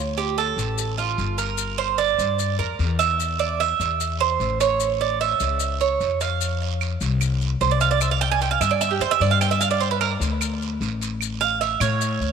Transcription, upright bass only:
0.00 0.52 D2 medium
0.57 1.14 A1 medium
1.18 2.13 G1 medium
2.18 2.56 G2 medium
2.59 2.78 F2 medium
2.79 3.74 E2 medium
3.80 4.36 E2 medium
4.39 5.34 A1 medium
5.40 5.97 C#2 medium
6.00 6.95 F2 medium
7.01 7.57 C2 medium
7.61 8.55 C2 medium
8.61 8.98 G2 medium
9.00 9.19 F2 medium
9.20 10.15 G2 medium
10.20 10.77 D2 medium
10.80 11.75 A1 medium
11.80 12.18 A2 loud
12.20 12.32 D2 medium

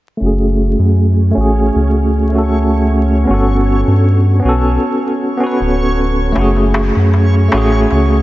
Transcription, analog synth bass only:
0.21 0.76 F#1 medium
0.79 1.33 F#2 medium
1.37 1.71 A1 medium
1.76 3.26 C#2 medium
3.29 3.84 G1 medium
3.88 4.41 G2 medium
4.45 4.78 B1 medium
5.60 6.33 D1 medium
6.37 6.91 F#1 medium
6.97 7.49 F#2 medium
7.54 7.87 A1 medium
7.92 8.22 C#2 medium

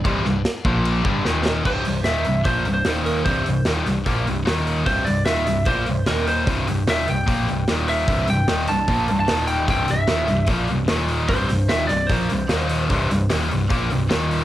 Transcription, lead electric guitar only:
1.67 2.08 C5 loud
2.04 2.46 E5 medium
2.46 2.72 C5 medium
2.74 3.05 C5 medium
3.05 3.24 A#4 medium
3.25 3.63 C5 medium
4.87 5.08 C5 medium
5.05 5.25 D5 medium
5.25 5.68 E5 medium
5.66 6.07 C5 medium
6.07 6.28 A#4 medium
6.28 6.65 C5 medium
6.90 7.08 E5 medium
7.10 7.85 G5 medium
7.89 8.26 E5 medium
8.30 8.68 G5 loud
8.68 9.19 A5 loud
9.20 9.47 A5 medium
9.47 9.67 G5 medium
9.70 9.90 G5 loud
9.91 10.46 E5 medium
11.29 11.71 C5 loud
11.69 11.87 E5 loud
11.87 12.09 D5 medium
12.07 14.05 C5 medium

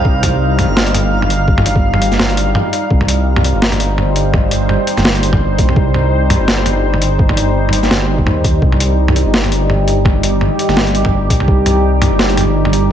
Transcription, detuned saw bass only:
0.00 0.67 C2 medium
0.68 0.93 G1 medium
0.94 2.10 G1 medium
2.11 2.55 G1 loud
2.91 3.53 C2 medium
3.54 4.78 G1 loud
4.97 5.58 G1 medium
5.59 5.68 A#1 loud
5.69 6.39 C2 medium
6.40 6.65 G1 loud
6.65 7.81 G1 medium
7.83 8.26 G1 loud
8.27 8.61 D#2 medium
8.62 9.24 C2 loud
9.26 10.50 G1 loud
10.69 11.29 G1 medium
11.30 11.39 A#1 loud
11.40 12.10 C2 medium
12.11 12.36 G1 medium
12.37 12.92 G1 medium

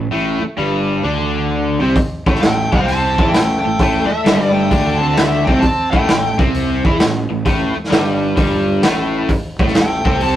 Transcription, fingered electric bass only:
0.00 0.11 A1 medium
0.11 0.40 A1 medium
0.43 muted fingered electric bass stroke soft
0.58 1.01 G1 medium
1.04 1.77 D2 medium
1.82 1.96 C2 medium
2.26 2.41 A1 medium
2.43 2.71 A1 medium
2.72 3.15 C2 medium
3.18 3.33 E2 medium
3.35 3.63 A1 medium
3.66 3.79 A1 medium
3.80 4.08 A1 medium
4.11 muted fingered electric bass stroke soft
4.26 4.69 G1 medium
4.71 5.44 D2 medium
5.48 5.62 C2 medium
5.93 6.08 A1 medium
6.09 6.38 A1 medium
6.39 6.82 C2 medium
6.85 6.99 E2 medium
7.00 7.29 A1 medium
7.30 7.45 A1 medium
7.46 7.75 A1 medium
7.76 muted fingered electric bass stroke soft
7.92 8.35 G1 medium
8.37 8.80 G1 medium
8.84 9.27 A1 medium
9.59 9.74 A1 medium
9.76 10.04 A1 medium
10.05 10.36 C2 medium

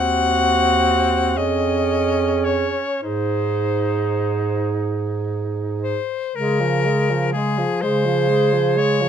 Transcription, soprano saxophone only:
0.00 1.39 F#5 medium
1.37 2.46 D#5 medium
2.44 3.02 C#5 medium
3.03 4.70 C5 medium
5.82 6.37 C5 medium
6.35 7.32 A#4 medium
7.33 7.83 G#4 medium
7.82 8.80 C5 medium
8.78 9.09 C#5 medium

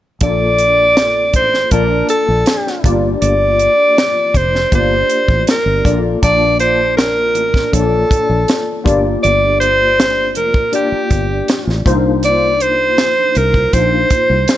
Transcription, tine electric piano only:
0.21 1.47 A#3 medium
0.21 1.47 D4 medium
0.21 1.47 F4 medium
0.21 1.47 A4 medium
0.21 1.47 D5 medium
1.72 2.82 A#3 medium
1.72 2.83 D4 medium
1.72 2.84 F4 soft
1.72 2.84 D5 medium
1.72 2.84 A5 medium
2.84 4.09 A#3 medium
2.84 4.10 D4 medium
2.84 4.10 F4 medium
2.84 4.10 G4 medium
2.84 4.10 D5 medium
4.72 5.84 A#3 medium
4.72 5.84 D4 medium
4.72 5.84 F4 medium
4.72 5.85 G4 medium
4.72 5.84 D5 medium
5.85 6.16 A#3 medium
5.85 6.16 D4 medium
5.85 6.16 F4 medium
5.85 6.16 A4 medium
5.85 6.16 D5 medium
6.22 7.48 A#3 medium
6.22 7.48 D4 medium
6.22 7.48 F4 medium
6.22 7.48 D5 medium
6.22 7.48 A5 medium
7.72 8.83 A#3 medium
7.72 8.83 D4 medium
7.72 8.83 F4 soft
7.72 8.86 A4 medium
7.72 7.80 C#5 soft
7.80 8.84 D5 medium
8.84 10.10 A#3 medium
8.84 10.10 D4 medium
8.84 10.10 F4 medium
8.84 10.11 G4 medium
8.84 10.11 D5 loud
10.72 11.84 A#3 medium
10.72 11.85 D4 medium
10.72 11.86 F4 medium
10.72 11.86 G4 medium
10.72 11.86 D5 medium
11.85 13.11 A#3 medium
11.85 13.11 D4 medium
11.85 13.12 D#4 medium
11.85 13.12 F4 medium
11.85 13.12 C5 loud
13.73 14.57 A#3 medium
13.73 14.57 D4 medium
13.73 14.57 D#4 medium
13.73 14.57 F4 medium
13.73 14.57 C5 medium

